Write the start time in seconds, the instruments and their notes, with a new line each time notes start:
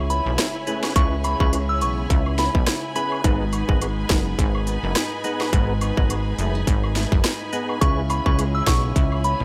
Already playing: analog synth bass C#2, nylon-string guitar C#3 G#3 E4, string section E4 C#5 G#5 B5, impact
0.10 nylon-string guitar B3, synth bell B5, closed hi-hat, cabasa
0.26 analog synth bass B1
0.38 nylon-string guitar E4, cross-stick, snare, closed hi-hat
0.67 nylon-string guitar A3, tonewheel organ C#4 E4 G#4 B4, closed hi-hat, cabasa
0.83 nylon-string guitar B3, snare, high woodblock
0.95 analog synth bass C#2, nylon-string guitar C#3 E4, tonewheel organ C#4 E4 G#4 B4, synth bell C#6, kick, closed hi-hat
1.24 nylon-string guitar B3, synth bell B5, closed hi-hat, cabasa, high woodblock
1.40 analog synth bass C#2, tonewheel organ C#4 E4 G#4 B4, synth bell C#6, kick
1.53 nylon-string guitar G#3, closed hi-hat, high woodblock
1.69 synth bell E6
1.81 analog synth bass B1, nylon-string guitar B3, synth bell C#6, closed hi-hat, cabasa
2.10 analog synth bass C#2, nylon-string guitar E4, kick, closed hi-hat
2.26 high woodblock
2.38 nylon-string guitar B3, synth bell B5, snare, closed hi-hat, cabasa
2.55 analog synth bass B1, kick
2.67 nylon-string guitar E4, cross-stick, snare, closed hi-hat
2.95 nylon-string guitar B3, tonewheel organ C#4 E4 G#4 B4, synth bell B5, closed hi-hat, cabasa
3.12 high woodblock
3.24 analog synth bass G#1, nylon-string guitar G#2 D#4, tonewheel organ B3 D#4 G#4 B4, string section D#4 B4, kick, closed hi-hat
3.53 nylon-string guitar B3, closed hi-hat, cabasa, high woodblock
3.69 analog synth bass G#1, tonewheel organ B3 D#4 G#4 B4, kick
3.81 nylon-string guitar G#3, closed hi-hat, high woodblock
4.09 analog synth bass F#1, nylon-string guitar B3, kick, cross-stick, snare, closed hi-hat, cabasa
4.39 analog synth bass G#1, nylon-string guitar D#4, kick, closed hi-hat
4.55 high woodblock
4.67 nylon-string guitar B3, closed hi-hat, cabasa
4.83 analog synth bass F#1
4.95 nylon-string guitar D#4, cross-stick, snare, closed hi-hat
5.24 tonewheel organ B3 D#4 G#4 B4, nylon-string guitar B3, closed hi-hat, cabasa
5.41 snare, high woodblock
5.53 analog synth bass G#1, nylon-string guitar G#2 D#4, tonewheel organ B3 D#4 G#4 B4, kick, closed hi-hat
5.81 nylon-string guitar B3, closed hi-hat, cabasa, high woodblock
5.97 analog synth bass G#1, tonewheel organ B3 D#4 G#4 B4, kick
6.10 nylon-string guitar G#3, closed hi-hat, high woodblock
6.38 analog synth bass F#1, nylon-string guitar A3, closed hi-hat, cabasa
6.55 nylon-string guitar B3
6.67 analog synth bass G#1, nylon-string guitar D#4, kick, closed hi-hat
6.83 high woodblock
6.96 nylon-string guitar A3, snare, closed hi-hat, cabasa
7.12 analog synth bass F#1, nylon-string guitar B3, kick
7.24 nylon-string guitar D#4, cross-stick, snare, closed hi-hat
7.53 tonewheel organ B3 D#4 G#4 B4, nylon-string guitar B3, closed hi-hat, cabasa
7.69 high woodblock
7.81 analog synth bass C#2, nylon-string guitar C#3 E4, tonewheel organ C#4 E4 G#4 B4, string section E4 C#5, synth bell C#6, kick, closed hi-hat
8.10 nylon-string guitar B3, synth bell B5, closed hi-hat, cabasa, high woodblock
8.26 analog synth bass C#2, tonewheel organ C#4 E4 G#4 B4, synth bell C#6, kick
8.39 nylon-string guitar G#3, closed hi-hat, high woodblock
8.55 synth bell E6
8.67 analog synth bass B1, nylon-string guitar B3, synth bell C#6, kick, cross-stick, snare, closed hi-hat, cabasa
8.96 analog synth bass C#2, nylon-string guitar E4, kick, closed hi-hat
9.12 high woodblock
9.24 nylon-string guitar B3, synth bell B5, closed hi-hat, cabasa
9.40 analog synth bass B1